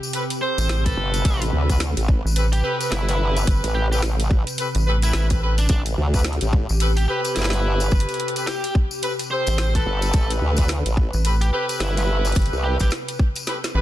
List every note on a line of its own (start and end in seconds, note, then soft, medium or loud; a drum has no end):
0.00 13.82 C3 medium
0.00 1.24 G4 medium
0.00 tambourine medium
0.13 0.23 C4 loud
0.13 0.23 G4 medium
0.13 0.23 A4 medium
0.13 0.23 B4 loud
0.13 closed hi-hat medium
0.13 tambourine medium
0.30 closed hi-hat medium
0.30 tambourine soft
0.41 0.82 C4 loud
0.41 0.82 G4 medium
0.41 0.82 A4 medium
0.41 0.82 C5 loud
0.41 0.83 C5 medium
0.58 0.95 A1 loud
0.58 closed hi-hat soft
0.58 tambourine medium
0.69 snare loud
0.69 closed hi-hat medium
0.69 tambourine medium
0.86 1.65 C4 medium
0.86 1.65 G4 medium
0.86 1.41 A4 medium
0.86 1.65 A4 medium
0.86 1.65 B4 loud
0.86 kick medium
0.86 closed hi-hat medium
0.86 tambourine soft
0.97 1.23 G1 loud
1.14 closed hi-hat soft
1.14 tambourine medium
1.25 1.51 A1 loud
1.25 5.69 B4 loud
1.25 kick loud
1.25 closed hi-hat medium
1.25 tambourine medium
1.42 closed hi-hat medium
1.42 tambourine soft
1.53 1.95 D2 medium
1.69 1.79 C4 medium
1.69 1.79 G4 medium
1.69 1.79 A4 medium
1.69 1.79 B4 medium
1.69 kick medium
1.69 closed hi-hat soft
1.69 tambourine medium
1.80 snare loud
1.80 closed hi-hat medium
1.80 tambourine medium
1.97 2.22 A1 medium
1.97 closed hi-hat medium
1.97 tambourine soft
2.08 kick loud
2.25 2.62 A1 loud
2.25 tambourine medium
2.36 2.45 C4 loud
2.36 2.45 G4 medium
2.36 2.45 A4 medium
2.36 2.45 B4 loud
2.36 closed hi-hat medium
2.36 tambourine medium
2.53 2.60 G4 medium
2.53 closed hi-hat medium
2.53 tambourine soft
2.64 3.04 C4 loud
2.64 3.04 G4 medium
2.64 2.74 G4 medium
2.64 3.04 A4 medium
2.64 3.04 B4 loud
2.81 closed hi-hat soft
2.81 tambourine medium
2.91 3.45 G1 loud
2.91 3.36 E4 medium
2.91 snare loud
2.91 closed hi-hat medium
2.91 tambourine medium
3.08 3.87 C4 medium
3.08 3.88 G4 medium
3.08 3.87 A4 medium
3.08 3.88 B4 loud
3.08 snare soft
3.08 closed hi-hat medium
3.08 tambourine soft
3.37 closed hi-hat soft
3.37 tambourine medium
3.47 3.61 G1 loud
3.47 kick loud
3.47 closed hi-hat medium
3.64 4.44 A1 loud
3.64 closed hi-hat medium
3.64 tambourine soft
3.75 3.85 G4 medium
3.92 4.01 C4 medium
3.92 4.01 G4 medium
3.92 3.99 G4 medium
3.92 4.01 A4 medium
3.92 4.01 B4 medium
3.92 tambourine medium
4.02 snare loud
4.02 closed hi-hat medium
4.02 tambourine medium
4.20 closed hi-hat medium
4.20 tambourine soft
4.31 kick loud
4.47 closed hi-hat soft
4.47 tambourine medium
4.58 4.67 C4 medium
4.58 4.67 G4 medium
4.58 4.67 A4 medium
4.58 4.67 B4 loud
4.58 closed hi-hat medium
4.58 tambourine medium
4.75 5.12 A1 loud
4.75 closed hi-hat medium
4.75 tambourine soft
4.86 4.95 C4 medium
4.86 4.95 G4 medium
4.86 4.95 A4 medium
4.86 4.95 B4 loud
5.02 5.27 C4 medium
5.02 5.10 E4 medium
5.02 5.27 G4 medium
5.02 5.27 A4 medium
5.02 5.27 B4 loud
5.02 closed hi-hat soft
5.02 tambourine medium
5.13 5.68 A1 medium
5.13 5.25 E4 medium
5.13 snare loud
5.13 closed hi-hat medium
5.13 tambourine medium
5.30 5.39 C4 medium
5.30 5.39 G4 medium
5.30 5.39 A4 medium
5.30 5.39 B4 loud
5.30 kick medium
5.30 closed hi-hat medium
5.30 tambourine soft
5.42 5.56 C4 loud
5.42 5.56 G4 medium
5.42 5.56 A4 medium
5.42 5.56 B4 loud
5.58 5.66 D4 medium
5.58 closed hi-hat soft
5.58 tambourine medium
5.69 5.96 A1 loud
5.69 5.80 D4 medium
5.69 10.13 G4 loud
5.69 kick loud
5.69 closed hi-hat medium
5.69 tambourine medium
5.86 closed hi-hat soft
5.86 tambourine soft
5.98 6.39 D2 medium
6.14 6.23 C4 medium
6.14 6.23 G4 medium
6.14 6.23 A4 medium
6.14 6.23 B4 medium
6.14 kick medium
6.14 closed hi-hat soft
6.14 tambourine medium
6.19 closed hi-hat soft
6.24 snare loud
6.24 closed hi-hat medium
6.24 tambourine medium
6.33 closed hi-hat soft
6.41 6.67 A1 loud
6.41 closed hi-hat medium
6.41 tambourine soft
6.53 kick loud
6.69 7.07 A1 loud
6.69 tambourine medium
6.80 6.90 C4 loud
6.80 6.89 G4 medium
6.80 6.89 A4 medium
6.80 6.89 B4 loud
6.80 closed hi-hat medium
6.80 tambourine medium
6.97 7.04 G4 medium
6.97 closed hi-hat medium
6.97 tambourine soft
7.08 7.49 C4 loud
7.08 7.19 G4 medium
7.08 7.49 G4 medium
7.08 7.49 A4 medium
7.08 7.49 B4 loud
7.25 closed hi-hat soft
7.25 tambourine medium
7.36 7.90 G1 loud
7.36 7.80 E4 medium
7.36 snare medium
7.36 closed hi-hat medium
7.36 tambourine medium
7.39 snare medium
7.42 snare medium
7.44 snare medium
7.50 8.32 A4 medium
7.50 8.32 B4 loud
7.50 snare loud
7.53 8.32 C4 medium
7.53 8.32 G4 medium
7.53 snare soft
7.53 closed hi-hat medium
7.53 tambourine soft
7.80 closed hi-hat soft
7.80 tambourine medium
7.91 8.06 G1 loud
7.91 kick loud
7.91 tambourine medium
8.00 closed hi-hat medium
8.09 closed hi-hat soft
8.09 tambourine soft
8.14 closed hi-hat soft
8.20 closed hi-hat soft
8.28 closed hi-hat soft
8.36 8.46 C4 medium
8.36 8.46 G4 medium
8.36 8.46 A4 medium
8.36 8.46 B4 medium
8.36 closed hi-hat soft
8.36 tambourine medium
8.47 8.72 G4 medium
8.47 snare loud
8.47 closed hi-hat medium
8.47 tambourine medium
8.64 closed hi-hat medium
8.64 tambourine soft
8.75 kick loud
8.91 tambourine medium
9.02 9.12 C4 loud
9.02 9.12 G4 medium
9.02 9.12 A4 medium
9.02 9.12 B4 loud
9.02 closed hi-hat medium
9.02 tambourine medium
9.19 closed hi-hat medium
9.19 tambourine soft
9.31 9.71 C4 medium
9.31 9.71 G4 medium
9.31 9.71 A4 medium
9.31 9.71 C5 loud
9.31 9.72 C5 loud
9.47 9.84 A1 loud
9.47 closed hi-hat soft
9.47 tambourine medium
9.58 snare loud
9.58 closed hi-hat medium
9.58 tambourine medium
9.75 10.54 C4 medium
9.75 10.54 G4 medium
9.75 10.54 A4 medium
9.75 10.31 A4 medium
9.75 10.54 B4 loud
9.75 kick medium
9.75 closed hi-hat medium
9.75 tambourine soft
9.86 10.12 G1 loud
10.02 closed hi-hat soft
10.02 tambourine medium
10.13 10.40 A1 loud
10.13 13.82 B4 medium
10.13 kick loud
10.13 closed hi-hat medium
10.13 tambourine medium
10.30 closed hi-hat medium
10.30 tambourine soft
10.41 10.83 D2 loud
10.57 10.68 C4 medium
10.57 10.68 G4 medium
10.57 10.68 A4 medium
10.57 10.68 B4 medium
10.57 kick medium
10.57 closed hi-hat soft
10.57 tambourine medium
10.68 snare loud
10.68 closed hi-hat medium
10.68 tambourine medium
10.86 11.11 A1 medium
10.86 closed hi-hat medium
10.86 tambourine soft
10.97 kick loud
11.13 11.51 A1 loud
11.13 tambourine medium
11.25 11.34 C4 loud
11.25 11.34 G4 medium
11.25 11.34 A4 medium
11.25 11.34 B4 loud
11.25 closed hi-hat medium
11.25 tambourine medium
11.41 11.49 G4 medium
11.41 closed hi-hat medium
11.41 tambourine soft
11.53 11.93 C4 loud
11.53 11.93 G4 medium
11.53 11.63 G4 medium
11.53 11.93 A4 medium
11.53 11.93 B4 loud
11.69 closed hi-hat soft
11.69 tambourine medium
11.80 12.34 G1 medium
11.80 12.25 E4 medium
11.80 snare loud
11.80 closed hi-hat medium
11.97 12.76 C4 medium
11.97 12.76 G4 medium
11.97 12.76 A4 medium
11.97 12.76 B4 loud
11.97 snare soft
11.97 closed hi-hat medium
11.97 tambourine soft
12.25 closed hi-hat soft
12.25 tambourine medium
12.32 kick loud
12.32 closed hi-hat soft
12.32 tambourine medium
12.36 12.50 G1 loud
12.36 closed hi-hat medium
12.42 closed hi-hat soft
12.46 closed hi-hat soft
12.53 12.78 C2 loud
12.53 tambourine soft
12.64 12.75 G4 medium
12.80 12.90 A1 loud
12.80 12.90 C4 medium
12.80 12.90 G4 medium
12.80 12.88 G4 medium
12.80 12.90 A4 medium
12.80 12.90 B4 medium
12.80 kick medium
12.80 snare soft
12.80 closed hi-hat soft
12.80 tambourine medium
12.91 snare loud
12.91 closed hi-hat medium
12.91 tambourine medium
13.08 closed hi-hat medium
13.08 tambourine soft
13.19 kick loud
13.36 closed hi-hat soft
13.36 tambourine medium
13.47 13.56 C4 loud
13.47 13.56 G4 medium
13.47 13.56 A4 medium
13.47 13.56 B4 loud
13.47 snare medium
13.47 closed hi-hat medium
13.64 snare medium
13.64 closed hi-hat medium
13.64 tambourine soft
13.75 13.82 A1 loud
13.75 13.82 C4 loud
13.75 13.82 G4 medium
13.75 13.82 A4 medium
13.75 13.82 B4 loud